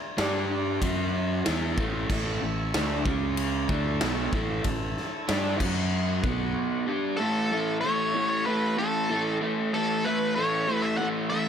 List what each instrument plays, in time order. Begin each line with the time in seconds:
0.17 fingered electric bass G2, overdriven electric guitar G3 D4 G4, snare, ride bell
0.81 fingered electric bass F#2, overdriven electric guitar F#3 C#4 F#4, kick, ride bell
1.45 fingered electric bass E2, overdriven electric guitar E3 B3 E4, snare, ride bell
1.77 fingered electric bass A1, overdriven electric guitar A2 E3 A3, kick
2.09 fingered electric bass A1, overdriven electric guitar A2 E3 A3, tonewheel organ E4 A4 C#5 E5, kick, crash
2.42 fingered electric bass A1, overdriven electric guitar A2 E3
2.74 fingered electric bass D2, overdriven electric guitar D3 A3 D4, snare, ride bell
3.05 fingered electric bass C#2, overdriven electric guitar C#3 G#3 C#4, tonewheel organ C#4 G#4 C#5, kick
3.37 ride bell
3.69 fingered electric bass D2, overdriven electric guitar D3 A3 D4, tonewheel organ E4 A4 C#5 A5, kick
4.01 fingered electric bass B1, overdriven electric guitar B2 F#3 B3, snare, ride bell
4.32 fingered electric bass A1, overdriven electric guitar A2 E3 A3, kick
4.64 fingered electric bass A1, overdriven electric guitar A2 E3, kick, ride bell
4.97 snare
5.28 fingered electric bass G2, overdriven electric guitar G3 D4 G4, snare, ride bell
5.60 fingered electric bass F#2, overdriven electric guitar F#3 C#4 F#4, tonewheel organ F#4 C#5 F#5, kick, crash
6.22 fingered electric bass B1, overdriven electric guitar B2 F#3 B3, tonewheel organ F#4 B4 F#5, kick
6.86 overdriven electric guitar G3 D4 G4
7.17 overdriven electric guitar A2 E3 A3, tonewheel organ C#4 E4 A4 E5, lead electric guitar A4
7.51 overdriven electric guitar A2 E3 A3
7.81 overdriven electric guitar A2 E3 A3, lead electric guitar C#5
8.14 overdriven electric guitar A2 E3 A3
8.29 lead electric guitar C#5
8.46 overdriven electric guitar A2 E3 A3, lead electric guitar B4
8.78 overdriven electric guitar A2 E3 A3, lead electric guitar A4
9.10 overdriven electric guitar A2 E3 A3
9.41 overdriven electric guitar A2 E3 A3
9.73 overdriven electric guitar A2 E3 A3, tonewheel organ E4 A4 C#5 E5, lead electric guitar A4
10.05 overdriven electric guitar A2 E3 A3, lead electric guitar B4
10.35 overdriven electric guitar A2 E3 A3, lead electric guitar C#5
10.68 overdriven electric guitar A2 E3 A3
10.82 lead electric guitar E5
10.97 overdriven electric guitar A2 E3 A3, lead electric guitar F#5
11.30 overdriven electric guitar A2 E3 A3, lead electric guitar E5